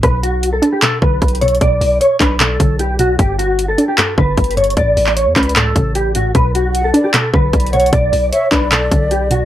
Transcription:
<<
  \new Staff \with { instrumentName = "Flute" } { \time 4/4 \key b \minor \tempo 4 = 152 r1 | r1 | r1 | r1 |
r4 fis''8 d''8 r4. fis''8 | r4 e''8 d''2~ d''8 | }
  \new Staff \with { instrumentName = "Clean electric guitar" } { \time 4/4 \key b \minor b'8 fis'8. a'8 g'16 a'8 b'4 cis''8 | d''4 cis''8 b'8 a'4 g'8 fis'8 | g'8 fis'8. a'8 g'16 a'8 b'4 cis''8 | d''4 cis''8 b'8 a'4 g'8 fis'8 |
b'8 fis'8. a'8 g'16 a'8 b'4 cis''8 | d''4 cis''8 b'8 a'4 g'8 fis'8 | }
  \new Staff \with { instrumentName = "Synth pluck" } { \clef bass \time 4/4 \key b \minor b,4. d'8 b,8 d4 b,8 | b,4. d'8 b,8 d4 b,8 | g,4. d'8 g,8 d4 g,8 | a,4. cis'8 a,8 cis4 a,8 |
b,4. d'8 b,8 d4 b,8 | b,4. d'8 b,8 d4 b,8 | }
  \new Staff \with { instrumentName = "808-style bass" } { \clef bass \time 4/4 \key b \minor b,,4. r4 b,,8 b,,4 | b,,8 b,,8 r8 b,,4 b,,4. | g,,4. r4 g,,8 g,,4 | a,,8 a,,8. e,16 cis,4 a,,4. |
b,,4. r4 b,,8 b,,4 | b,,8 b,,8 r8 b,,4 b,,4. | }
  \new DrumStaff \with { instrumentName = "Drums" } \drummode { \time 4/4 <hh bd>8 hh8 hh8 hh8 <hc hh>8 bd8 \tuplet 3/2 { <hh bd>16 hh16 hh16 hh16 hh16 hh16 } | <hh bd>8 hho8 hh8 <hc hh bd>8 <hc hh>8 <hh bd>8 hh8 hh8 | <hh bd>8 hh8 hh8 hh8 <hc hh>8 bd8 \tuplet 3/2 { <hh bd>16 hh16 hh16 hh16 hh16 hh16 } | <hh bd>8 hho16 hc16 \tuplet 3/2 { hh16 r16 r16 <hc hh bd>16 hh16 hh16 } <hc hh>8 <hh bd>8 hh8 hh8 |
<hh bd>8 hh8 hh8 hh8 <hc hh>8 bd8 \tuplet 3/2 { <hh bd>16 hh16 hh16 hh16 hh16 hh16 } | <hh bd>8 hho8 hh8 <hc hh bd>8 <hc hh>8 <hh bd>8 hh8 hh8 | }
>>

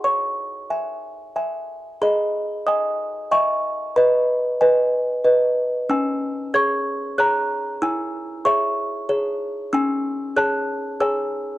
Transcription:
\new Staff \with { instrumentName = "Music box" } { \time 3/4 \key cis \minor \tempo 4 = 94 << { cis'''2 r4 | \key gis \minor <dis'' b''>4 <gis'' dis'''>4 <e'' cis'''>4 | <dis'' b''>4 <b' gis''>2 | <gis'' e'''>4 <cis''' gis'''>4 <ais'' fis'''>4 |
<gis'' e'''>4 <e'' cis'''>2 | \key cis \minor <gis'' e'''>4 <a'' fis'''>4 <gis'' e'''>4 | } \\ { cis''4 <e'' gis''>4 <e'' gis''>4 | gis'4 dis''4 <dis'' gis''>4 | b'4 dis''4 <b' dis''>4 | cis'4 <gis' cis''>4 <gis' cis''>4 |
e'4 <gis' cis''>4 <gis' cis''>4 | cis'4 <gis' cis''>4 <gis' cis''>4 | } >> }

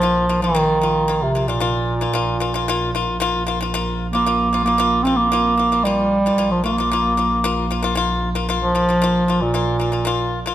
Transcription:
<<
  \new Staff \with { instrumentName = "Pipa" } { \time 4/4 \tempo 4 = 114 <bes f'>8 <bes f'>16 <bes f'>16 <bes f'>8 <bes f'>8 <bes f'>8 <bes f'>16 <bes f'>16 <bes f'>8 r16 <bes f'>16 | <bes f'>8 <bes f'>16 <bes f'>16 <bes f'>8 <bes f'>8 <bes f'>8 <bes f'>16 <bes f'>16 <bes f'>8 r16 <bes f'>16 | <bes f'>8 <bes f'>16 <bes f'>16 <bes f'>8 <bes f'>8 <bes f'>8 <bes f'>16 <bes f'>16 <bes f'>8 r16 <bes f'>16 | <bes f'>8 <bes f'>16 <bes f'>16 <bes f'>8 <bes f'>8 <bes f'>8 <bes f'>16 <bes f'>16 <bes f'>8 r16 <bes f'>16 |
<bes f'>8 <bes f'>16 <bes f'>16 <bes f'>8 <bes f'>8 <bes f'>8 <bes f'>16 <bes f'>16 <bes f'>8 r16 <bes f'>16 | }
  \new Staff \with { instrumentName = "Bass clarinet" } { \clef bass \time 4/4 f8. ees4. c8 bes,4~ bes,16~ | bes,2 r4. r16 bes16~ | bes8. bes8. c'16 bes4~ bes16 g4~ | g16 f16 bes2~ bes8. r8. |
r16 f4. bes,2 r16 | }
  \new Staff \with { instrumentName = "Double bass" } { \clef bass \time 4/4 bes,,1 | bes,,1~ | bes,,1 | bes,,1~ |
bes,,1 | }
>>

